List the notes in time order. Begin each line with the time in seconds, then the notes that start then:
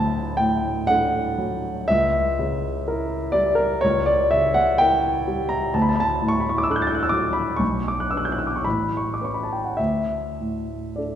Already playing: D2 A2 F#3 D4 A4 G5 A5 B5
0.37 A2 G5
0.87 D4 A4 F#5
1.38 F#3
1.88 C#2 E5
2.39 C#3
2.87 E4 A#4
3.32 G3 D5
3.55 A#4
3.81 C#2 C#5
4.06 D5
4.31 C#3 E5
4.54 F#5
4.78 E4 A#4 G5
5.28 G3
5.49 A#5
5.74 D2 A5
5.82 B5
5.89 A5
5.96 B5
6.00 A5
6.22 A2
6.28 C#6
6.40 B5
6.49 C#6
6.58 D6
6.63 E6
6.70 D4 A4 F#6
6.76 G6
6.82 A6
6.87 G6
6.95 F#6
7.03 E6
7.09 F#3 D6
7.33 B5
7.56 B1 C#6
7.88 D6
8.00 F#6
8.11 D4 B4 E6
8.17 F#6
8.25 G6
8.32 F#6
8.38 E6
8.47 D6
8.56 C#6
8.64 A1 B5
8.97 C#6
9.14 D6
9.21 C#4 B4 C#6
9.34 B5
9.43 A5
9.52 G5
9.64 F#5
9.77 D2 E5
10.40 A2
10.96 D4 A4 D5